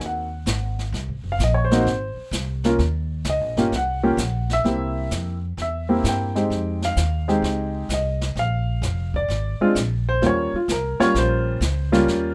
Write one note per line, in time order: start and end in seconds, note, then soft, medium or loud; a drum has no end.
0.00 0.45 D#2 medium
0.00 0.26 A#3 medium
0.00 0.26 C4 soft
0.00 0.26 D#4 soft
0.00 0.26 F#4 medium
0.00 brush sweep medium
0.00 snare soft
0.06 0.77 F#5 medium
0.46 0.92 G#1 medium
0.46 snare medium
0.46 hi-hat pedal medium
0.79 snare soft
0.92 1.10 C2 medium
0.92 brush sweep soft
0.92 snare soft
1.08 1.23 G#1 medium
1.24 1.38 F#1 medium
1.32 1.40 F5 medium
1.39 1.85 A#1 loud
1.39 snare medium
1.39 hi-hat pedal medium
1.44 1.57 D#5 medium
1.54 1.70 C#5 medium
1.65 1.75 C5 medium
1.71 1.85 A#3 medium
1.71 1.85 C4 medium
1.71 1.85 D#4 medium
1.71 1.86 F#4 medium
1.71 snare medium
1.80 2.45 C5 medium
1.85 2.15 G#1 medium
1.85 brush sweep medium
1.85 snare soft
2.17 muted upright bass stroke soft
2.31 2.77 C2 loud
2.31 snare medium
2.31 hi-hat pedal medium
2.64 2.78 A#3 medium
2.64 2.79 C#4 medium
2.64 2.79 F4 medium
2.64 2.79 A#4 medium
2.64 snare medium
2.79 3.24 D#2 medium
2.79 brush sweep soft
2.79 snare soft
3.24 3.41 C#2 medium
3.24 snare medium
3.24 hi-hat pedal medium
3.30 3.71 D#5 medium
3.41 3.56 A#1 medium
3.56 3.71 G1 medium
3.56 3.71 A#3 medium
3.56 3.71 C#4 medium
3.56 3.71 F4 medium
3.56 3.71 G4 medium
3.56 snare soft
3.72 4.17 C2 medium
3.72 4.48 F#5 medium
3.72 brush sweep medium
3.72 snare soft
4.03 4.17 A#3 medium
4.03 4.17 C#4 medium
4.03 4.17 F4 medium
4.03 4.17 G4 medium
4.17 4.63 A#1 medium
4.17 snare medium
4.17 hi-hat pedal medium
4.50 5.09 E5 loud
4.50 snare soft
4.64 5.10 C2 medium
4.64 5.36 A#3 medium
4.64 5.37 C4 medium
4.64 5.37 E4 medium
4.64 5.37 G4 medium
4.64 brush sweep soft
4.64 snare soft
5.11 5.56 F2 medium
5.11 snare medium
5.11 hi-hat pedal medium
5.57 6.03 E2 medium
5.57 brush sweep medium
5.57 snare soft
5.62 6.03 E5 medium
5.89 6.32 A#3 medium
5.89 6.32 C4 medium
5.89 6.32 E4 medium
5.89 6.33 G4 medium
6.04 6.49 G2 medium
6.04 snare medium
6.04 hi-hat pedal medium
6.09 6.80 G5 medium
6.35 6.94 G#3 medium
6.35 6.94 C4 medium
6.35 6.94 D#4 medium
6.35 6.95 G4 medium
6.35 snare soft
6.50 6.96 F2 medium
6.50 brush sweep soft
6.50 snare soft
6.82 7.41 F5 medium
6.82 snare medium
6.97 7.42 D#2 medium
6.97 snare medium
6.97 hi-hat pedal medium
7.28 7.87 G#3 medium
7.28 7.87 C4 medium
7.28 7.87 D#4 medium
7.28 7.87 G4 medium
7.28 snare soft
7.42 7.88 C#2 medium
7.42 brush sweep soft
7.42 snare soft
7.89 8.35 C2 medium
7.89 snare medium
7.89 hi-hat pedal medium
7.93 8.35 D#5 medium
8.21 snare medium
8.36 8.81 A#1 medium
8.36 9.12 F5 medium
8.36 brush sweep soft
8.36 snare soft
8.82 9.28 F1 medium
8.82 snare medium
8.82 hi-hat pedal medium
9.14 9.73 D5 loud
9.14 kick medium
9.28 9.58 G#1 medium
9.28 brush sweep soft
9.28 snare soft
9.60 9.75 G#3 medium
9.60 9.75 C4 medium
9.60 9.75 D4 medium
9.60 9.75 F4 medium
9.60 muted upright bass stroke soft
9.75 10.21 A#1 medium
9.75 snare medium
9.75 hi-hat pedal medium
10.09 10.23 C5 loud
10.22 10.51 D#2 medium
10.22 10.51 G3 medium
10.22 10.51 A#3 medium
10.22 10.51 C#4 medium
10.22 10.51 F4 medium
10.22 brush sweep soft
10.22 snare soft
10.26 10.55 C#5 medium
10.54 10.70 F4 medium
10.54 muted upright bass stroke soft
10.68 10.98 C2 medium
10.68 11.01 A#4 medium
10.68 snare medium
10.68 hi-hat pedal medium
11.00 11.59 G3 medium
11.00 11.59 A#3 medium
11.00 11.59 C#4 medium
11.00 11.59 F4 medium
11.00 11.15 C#5 loud
11.00 muted upright bass stroke soft
11.00 snare soft
11.14 11.60 A#1 medium
11.14 12.34 C5 medium
11.14 brush sweep soft
11.14 snare soft
11.61 12.06 C#2 medium
11.61 snare medium
11.61 hi-hat pedal medium
11.92 12.34 G3 medium
11.92 12.34 A#3 medium
11.92 12.34 C#4 medium
11.92 12.34 F4 medium
11.92 snare soft
12.07 12.34 D#2 medium
12.07 brush sweep soft
12.07 snare soft